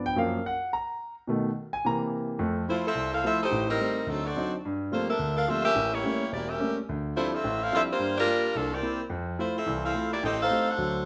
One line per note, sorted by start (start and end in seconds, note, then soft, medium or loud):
0.00 0.13 G2 medium
0.00 0.13 F3 soft
0.00 0.14 B3 medium
0.06 0.16 G5 loud
0.16 0.36 F#2 medium
0.16 0.36 F3 medium
0.16 0.37 A#3 medium
0.16 0.43 F5 medium
0.46 0.71 F#5 medium
0.73 1.14 A#5 medium
1.27 1.48 B2 medium
1.27 1.48 D#3 medium
1.27 1.49 A3 medium
1.73 1.84 G#5 medium
1.85 2.37 C3 medium
1.85 2.38 E3 soft
1.85 2.38 A#3 medium
1.85 1.96 A#5 medium
2.39 2.63 F2 medium
2.39 2.63 A3 medium
2.68 2.86 F3 medium
2.68 2.86 A3 medium
2.68 2.84 A3 medium
2.68 2.86 E4 medium
2.68 2.84 E4 medium
2.68 2.84 F4 medium
2.68 2.85 C5 loud
2.87 3.12 C4 medium
2.87 3.12 F4 medium
2.87 3.12 A4 medium
2.87 3.12 E5 medium
2.95 3.19 C2 medium
3.13 3.24 C4 medium
3.13 3.23 E4 medium
3.13 3.23 A4 medium
3.13 3.23 F5 loud
3.24 3.41 F3 medium
3.24 3.42 A3 medium
3.24 3.40 C4 loud
3.24 3.42 E4 medium
3.24 3.40 F4 medium
3.24 3.41 A4 medium
3.24 3.41 E5 loud
3.43 3.68 A3 medium
3.43 3.68 D#4 medium
3.43 3.68 G4 loud
3.43 3.68 C5 loud
3.51 3.75 A1 medium
3.51 3.75 A2 medium
3.70 4.06 G3 medium
3.70 4.06 C4 loud
3.70 4.05 D#4 medium
3.70 4.06 A#4 loud
3.79 3.97 G3 medium
3.79 3.98 A3 medium
3.79 3.98 C4 medium
4.07 4.31 D2 medium
4.07 4.25 F#3 medium
4.07 4.25 C4 medium
4.07 4.25 D#4 medium
4.07 4.25 A4 medium
4.26 4.54 C4 medium
4.26 4.53 F#4 medium
4.26 4.54 A4 medium
4.26 4.53 D5 medium
4.36 4.54 F#3 medium
4.36 4.54 C4 soft
4.36 4.54 D4 soft
4.36 4.54 D#4 medium
4.65 4.88 G2 medium
4.92 5.09 F3 medium
4.92 5.09 G3 medium
4.92 5.09 A3 medium
4.92 5.10 A#3 medium
4.92 5.08 A#3 medium
4.92 5.10 C4 medium
4.92 5.08 F4 medium
4.92 5.08 A4 medium
4.92 5.08 C5 medium
5.10 5.35 D4 medium
5.10 5.35 A4 medium
5.10 5.35 A#4 medium
5.10 5.35 E5 medium
5.19 5.43 D2 medium
5.19 5.43 D3 medium
5.37 5.47 D4 medium
5.37 5.47 A4 loud
5.37 5.47 A#4 medium
5.37 5.47 F5 loud
5.48 5.65 F3 medium
5.48 5.66 G3 medium
5.48 5.66 A3 soft
5.48 5.66 A#3 soft
5.48 5.65 C4 medium
5.48 5.65 F4 medium
5.48 5.65 A4 medium
5.48 5.64 E5 loud
5.65 5.91 C#4 loud
5.65 5.91 G4 medium
5.65 5.91 A#4 loud
5.65 5.91 E5 loud
5.76 5.99 A1 medium
5.93 6.32 A#3 medium
5.93 6.32 E4 medium
5.93 6.32 G4 medium
5.93 6.32 C#5 loud
6.04 6.21 G3 medium
6.04 6.21 A3 medium
6.04 6.22 A#3 soft
6.04 6.22 C#4 medium
6.32 6.56 E1 medium
6.32 6.48 A#3 medium
6.32 6.48 E4 medium
6.32 6.48 G4 medium
6.32 6.48 D5 medium
6.49 6.77 C#4 medium
6.49 6.77 G4 medium
6.49 6.76 A#4 medium
6.49 6.77 E5 medium
6.59 6.77 G3 medium
6.59 6.77 A3 soft
6.59 6.77 A#3 soft
6.59 6.78 C#4 medium
6.89 7.12 D2 medium
7.16 7.34 F3 medium
7.16 7.34 G3 soft
7.16 7.32 A3 medium
7.16 7.34 C4 soft
7.16 7.34 D4 medium
7.16 7.32 E4 medium
7.16 7.34 E4 medium
7.16 7.31 F4 medium
7.16 7.31 C5 loud
7.34 7.61 C4 medium
7.34 7.61 F4 medium
7.34 7.61 A4 medium
7.34 7.61 E5 loud
7.44 7.68 A1 medium
7.62 7.72 C4 medium
7.62 7.72 E4 loud
7.62 7.72 A4 medium
7.62 7.72 F5 loud
7.72 7.89 F3 soft
7.72 7.90 G3 medium
7.72 7.90 C4 medium
7.72 7.82 C4 loud
7.72 7.90 D4 soft
7.72 7.90 E4 medium
7.72 7.82 F4 loud
7.72 7.82 A4 loud
7.72 7.82 E5 loud
7.92 8.16 A#3 medium
7.92 8.17 F4 medium
7.92 8.16 G4 medium
7.92 8.16 C5 loud
7.99 8.23 G2 medium
7.99 8.23 G3 medium
8.18 8.54 G3 medium
8.18 8.53 D4 medium
8.18 8.54 F4 medium
8.18 8.54 A#4 loud
8.27 8.45 G3 medium
8.27 8.45 A#3 medium
8.27 8.45 F4 medium
8.55 8.79 C2 medium
8.55 8.73 F3 medium
8.55 8.73 A#3 medium
8.55 8.73 D4 medium
8.55 8.72 A4 loud
8.74 9.01 C4 medium
8.74 9.01 G4 medium
8.74 9.01 A#4 medium
8.74 9.01 D5 medium
8.82 9.00 A#3 medium
8.82 9.00 C4 medium
8.82 9.01 E4 medium
9.10 9.34 F2 medium
9.38 9.56 A3 medium
9.38 9.55 A3 medium
9.38 9.57 E4 medium
9.38 9.55 E4 medium
9.38 9.57 F4 medium
9.38 9.55 F4 medium
9.38 9.55 C5 medium
9.57 9.82 C4 medium
9.57 9.82 F4 medium
9.57 9.82 A4 medium
9.57 9.83 E5 medium
9.66 9.91 C2 medium
9.66 9.90 E3 medium
9.85 10.10 C4 medium
9.85 10.10 E4 medium
9.85 10.11 A4 medium
9.85 10.10 F5 loud
9.94 10.12 A3 medium
9.94 10.13 E4 medium
9.94 10.13 F4 medium
10.13 10.22 A#3 medium
10.13 10.23 E4 medium
10.13 10.23 G4 medium
10.13 10.23 D5 medium
10.23 10.47 A1 medium
10.23 10.39 C4 loud
10.23 10.40 G4 medium
10.23 10.39 A4 loud
10.23 10.39 D#5 loud
10.42 10.67 D#4 loud
10.42 10.67 A4 loud
10.42 10.67 C5 loud
10.42 10.67 F5 loud
10.50 10.68 A3 medium
10.50 10.68 C4 soft
10.50 10.68 G4 medium
10.70 11.05 D4 medium
10.70 11.05 A4 medium
10.70 11.05 C5 medium
10.70 11.05 F#5 loud
10.78 11.02 D2 medium
10.78 11.02 F#3 medium